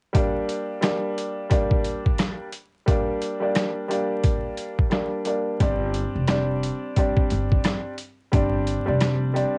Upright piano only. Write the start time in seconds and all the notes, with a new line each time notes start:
0.13 G3 A#3 D4
0.81 G3 A#3 D4
1.50 G3 A#3 D4
2.86 G3 A#3 D4
3.40 G3 A#3 D4
3.88 G3 A#3 D4
4.90 G3 A#3 D4
5.25 G3 A#3 D4
5.60 G3 C4 D4
6.28 G3 C4 D4
6.96 G3 C4 D4
8.32 G3 C4 D4
8.86 G3 C4 D4
9.34 G3 C4 D4